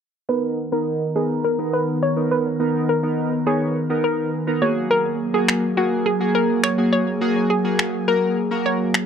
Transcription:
0.29 analog synth pad D#3 B3 A#4, synth keys B3 D#4 A#4, synth pluck B4
0.72 synth keys B3 D#4 A#4, synth pluck A#4
1.15 synth keys B3 D#4 A#4, synth pluck G#4
1.44 synth pluck A#4
1.59 synth keys B3 D#4 A#4
1.73 synth pluck B4
2.03 synth pluck C#5
2.16 synth keys B3 D#4 A#4
2.31 synth pluck B4
2.60 synth keys B3 D#4 A#4
2.89 synth pluck A#4
3.03 synth keys B3 D#4 A#4
3.46 synth keys B3 D#4 C#5, synth pluck G#4
3.90 synth keys B3 D#4 A#4
4.04 synth pluck A#4
4.47 synth keys B3 D#4 A#4
4.62 analog synth pad F#3 A#3 G#4, synth keys A#3 F#4 G#4, synth pluck C#5
4.91 synth pluck A#4
5.34 synth keys A#3 F#4 G#4, synth pluck G#4
5.48 finger snap
5.77 synth keys A#3 F#4 G#4, synth pluck F#4
6.06 synth pluck G#4
6.20 synth keys A#3 F#4 G#4
6.35 synth pluck A#4
6.63 synth pluck C#5, finger snap
6.78 synth keys A#3 F#4 G#4
6.93 synth pluck C#5
7.21 synth keys A#3 F#4 G#4
7.50 synth pluck G#4
7.64 synth keys A#3 F#4 G#4
7.79 finger snap
8.08 synth keys A#3 F#4 A#4, synth pluck A#4
8.51 synth keys A#3 F#4 A#4
8.66 synth pluck C#5
8.94 finger snap

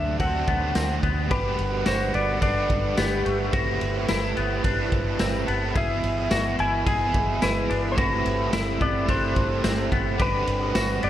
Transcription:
Already playing: fingered electric bass D2, brass ensemble C3 F#3 A3 D4, overdriven electric guitar D3 F#3 A3 D4 F#4 C5, clean electric guitar D4, electric slide guitar E5
0.17 fingered electric bass D2, overdriven electric guitar D3 F#3 A3, clean electric guitar C4, electric slide guitar F#5, kick, ride
0.23 overdriven electric guitar D4 F#4 C5
0.47 fingered electric bass D2, clean electric guitar B3, kick, ride
0.75 fingered electric bass D2, clean electric guitar C4, snare, ride, tambourine
1.03 fingered electric bass D2, clean electric guitar B3, kick, ride
1.28 fingered electric bass G1, brass ensemble D3 G3 B4 F#5, overdriven electric guitar G3 B3, clean electric guitar G4, electric slide guitar B4, kick, ride
1.33 overdriven electric guitar D4 F#4 B4
1.59 fingered electric bass G1, ride
1.86 fingered electric bass G1, clean electric guitar F#4, electric slide guitar C5, snare, ride, tambourine
2.14 fingered electric bass G1, clean electric guitar B3, electric slide guitar D5, ride
2.39 fingered electric bass G1, overdriven electric guitar G3 B3, clean electric guitar D4, electric slide guitar D5, kick, ride
2.44 overdriven electric guitar D4 B4
2.70 fingered electric bass G1, kick, ride
2.97 fingered electric bass G1, clean electric guitar B3, electric slide guitar G4, snare, ride, tambourine
3.25 fingered electric bass G1, clean electric guitar A3, ride
3.52 fingered electric bass G1, brass ensemble C3 A3 E4, overdriven electric guitar A3 C4 E4 A4, clean electric guitar F#4, kick, ride
3.81 fingered electric bass G1, ride
4.07 fingered electric bass G1, overdriven electric guitar A3 C4 E4, clean electric guitar E4, snare, ride, tambourine
4.12 overdriven electric guitar A4
4.37 fingered electric bass G1, clean electric guitar B3, ride
4.62 fingered electric bass G1, overdriven electric guitar A3 C4 E4 A4, clean electric guitar D4, kick, ride
4.92 fingered electric bass G1, kick, ride
5.19 fingered electric bass G1, clean electric guitar C4, snare, ride, tambourine
5.46 fingered electric bass G1, clean electric guitar B3, overdriven electric guitar E4 A4, ride
5.51 overdriven electric guitar C4
5.75 fingered electric bass G1, brass ensemble B2 E3 G#3 E4, overdriven electric guitar B3 E4, clean electric guitar G#4, electric slide guitar E5, kick, ride
5.80 overdriven electric guitar G#4
6.04 fingered electric bass G1, ride
6.31 fingered electric bass G1, clean electric guitar F#4, snare, ride, tambourine
6.59 fingered electric bass G1, clean electric guitar E4, electric slide guitar G#5, ride
6.86 fingered electric bass G1, overdriven electric guitar B3 E4, clean electric guitar G#4, electric slide guitar G#5, kick, ride
6.92 overdriven electric guitar G#4
7.14 fingered electric bass G1, kick, ride
7.42 fingered electric bass G1, clean electric guitar E4, electric slide guitar B4, snare, ride, tambourine
7.70 fingered electric bass G1, clean electric guitar D4, ride
7.92 overdriven electric guitar A3, electric slide guitar C5
7.97 fingered electric bass G1, brass ensemble C3 A3 C4, overdriven electric guitar C4 E4, clean electric guitar F#4, electric slide guitar B4, kick, ride
8.03 overdriven electric guitar A4
8.25 fingered electric bass G1, ride
8.53 fingered electric bass G1, clean electric guitar E4, snare, ride, tambourine
8.81 fingered electric bass G1, clean electric guitar B3, electric slide guitar D5, kick, ride
9.07 fingered electric bass G1, overdriven electric guitar A3 C4, clean electric guitar D4, electric slide guitar C5, kick, ride
9.12 overdriven electric guitar E4 A4
9.36 fingered electric bass G1, kick, ride
9.64 fingered electric bass G1, clean electric guitar C4, snare, ride, tambourine
9.92 fingered electric bass G1, clean electric guitar B3, kick, ride
10.18 fingered electric bass G1, brass ensemble D3 G3 F#5, overdriven electric guitar G3 D4, clean electric guitar G4, electric slide guitar B4, kick, ride
10.23 overdriven electric guitar F#4 B4
10.47 fingered electric bass G1, ride
10.75 fingered electric bass G1, clean electric guitar F#4, snare, ride, tambourine
11.03 fingered electric bass G1, clean electric guitar B3, electric slide guitar D5, ride

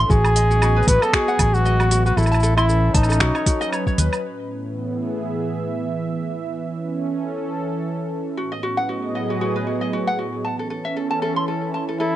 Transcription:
Already playing: analog synth pad C#4 E5
0.10 fingered electric bass A1, analog synth pad F#3, ukulele F#4, flugelhorn G#4, kick, cabasa
0.20 analog synth pad D#5
0.25 cabasa, low woodblock
0.32 analog synth pad B3
0.36 ukulele D#5, open hi-hat, cabasa
0.50 ukulele F#4, cabasa
0.60 ukulele F#4, analog synth pad G#4, cabasa, low woodblock
0.76 ukulele B4
0.83 cabasa
0.87 fingered electric bass A1, ukulele F#4, flugelhorn B4, kick, open hi-hat, cabasa
1.02 flugelhorn A4, ukulele D#5, cabasa, low woodblock
1.13 ukulele F#4, flugelhorn G#4, finger snap, kick, cabasa
1.28 ukulele F#5, cabasa
1.39 fingered electric bass A1, ukulele F#4, kick, open hi-hat, cabasa, low woodblock
1.54 flugelhorn F#4, cabasa
1.65 ukulele D#5, cabasa
1.80 ukulele F#4, cabasa, low woodblock
1.91 ukulele F#4, open hi-hat, cabasa
2.06 flugelhorn F#4, ukulele B4, cabasa
2.17 fingered electric bass A1, analog synth pad E3, flugelhorn E4, ukulele A4, cabasa, low woodblock
2.22 cabasa, low woodblock
2.27 analog synth pad C#4, cabasa
2.31 analog synth pad E5, ukulele A5, cabasa, low woodblock
2.35 cabasa
2.40 analog synth pad A4, ukulele A4, cabasa
2.43 cabasa
2.57 flugelhorn E4, ukulele C6, cabasa, low woodblock
2.69 ukulele A4, cabasa
2.94 fingered electric bass A1, flugelhorn D#4, ukulele A5, kick, open hi-hat, cabasa, low woodblock
3.03 cabasa, low woodblock
3.09 ukulele A4, cabasa, low woodblock
3.12 cabasa
3.20 fingered electric bass B1, analog synth pad F#3, ukulele F#4, finger snap, kick, cabasa
3.35 ukulele C#5, cabasa, low woodblock
3.41 analog synth pad B4
3.46 ukulele F#4, kick, open hi-hat, cabasa
3.61 ukulele D#5, cabasa
3.66 analog synth pad D#5
3.72 ukulele C#5, cabasa, low woodblock
3.87 ukulele C#5, kick, cabasa
3.98 fingered electric bass D#2, ukulele B4, open hi-hat, cabasa
4.13 cabasa, low woodblock
4.23 analog synth pad A2
4.38 analog synth pad B3
4.44 analog synth pad E3
4.57 analog synth pad E5
4.74 analog synth pad G#4
6.56 analog synth pad C#4
6.76 analog synth pad A4
8.37 analog synth pad A2, ukulele F#4
8.48 analog synth pad B3, ukulele D#5
8.55 analog synth pad F#3 D#5
8.63 ukulele F#4
8.72 analog synth pad G#4
8.77 ukulele F#5
8.89 ukulele F#4
9.15 ukulele D#5
9.30 ukulele F#4
9.41 ukulele F#4
9.56 ukulele B4
9.67 ukulele F#4
9.81 ukulele D#5
9.93 ukulele F#4
10.07 ukulele F#5
10.19 ukulele F#4
10.45 analog synth pad E3, ukulele A5
10.52 analog synth pad C#4
10.59 ukulele A4, analog synth pad A4
10.70 ukulele A4
10.79 analog synth pad E4
10.85 ukulele E5
10.96 ukulele A4
11.11 ukulele A5
11.22 ukulele A4
11.36 ukulele C6
11.48 ukulele A4
11.74 ukulele A5
11.89 ukulele A4
11.99 flugelhorn E4, ukulele A4

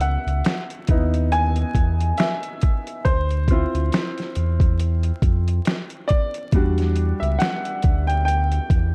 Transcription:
Already playing: sub bass C#2, upright piano E5
0.01 upright piano F#5, closed hi-hat
0.26 sub bass C#2, closed hi-hat
0.44 finger snap, snare, closed hi-hat
0.70 closed hi-hat
0.87 sub bass D#2, upright piano B3 D#4 E4, kick, closed hi-hat
1.14 closed hi-hat
1.32 upright piano G#5, closed hi-hat
1.56 closed hi-hat
1.75 sub bass E2, kick, closed hi-hat
2.00 closed hi-hat
2.18 upright piano E5, finger snap, snare, closed hi-hat
2.43 closed hi-hat
2.61 kick, closed hi-hat
2.87 closed hi-hat
3.05 sub bass D2, upright piano C5, kick, closed hi-hat
3.31 closed hi-hat
3.48 upright piano C4 E4 F4, kick, closed hi-hat
3.74 sub bass D2, closed hi-hat
3.92 finger snap, snare, closed hi-hat
4.18 snare, closed hi-hat
4.35 sub bass E2, closed hi-hat
4.60 kick, closed hi-hat
4.80 closed hi-hat
5.03 closed hi-hat
5.22 sub bass F2, kick, closed hi-hat
5.48 closed hi-hat
5.65 finger snap, snare, closed hi-hat
5.90 closed hi-hat
6.08 upright piano D5, kick, closed hi-hat
6.34 closed hi-hat
6.52 sub bass E2, upright piano G3 D4 F#4, kick, closed hi-hat
6.78 snare, closed hi-hat
6.96 closed hi-hat
7.20 sub bass C#2, upright piano E5, closed hi-hat
7.39 upright piano F#5, finger snap, snare, closed hi-hat
7.65 closed hi-hat
7.82 sub bass D2, kick, closed hi-hat
8.07 upright piano G5, closed hi-hat
8.25 upright piano G5, closed hi-hat
8.52 closed hi-hat
8.70 sub bass E2, kick, closed hi-hat

